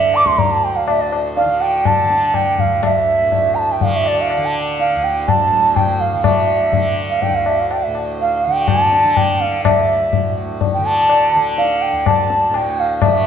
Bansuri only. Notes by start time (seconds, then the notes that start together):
Already playing: E5
0.16 D6
0.27 C6
0.39 A#5
0.52 A5
0.64 G5
0.76 F5
0.87 E5
1.01 D5
1.37 F5
1.61 G5
1.86 A5
2.35 G5
2.60 F5
2.85 E5
3.55 A5 A#5
3.72 G5
3.84 F5
3.96 E5
4.08 D5
4.21 F5
4.45 A5
4.80 F5
5.04 G5
5.29 A5
5.76 G5
6.01 F5
6.26 E5
7.10 F5
7.22 G5
7.35 F5
7.48 E5
7.60 F5
7.72 G5
7.84 E5
8.21 F5
8.45 G5
8.68 A5
9.17 G5
9.41 F5
9.65 E5
10.74 G5
10.86 A5
11.58 F5
11.82 G5
12.07 A5
12.55 G5
12.80 F5
13.03 E5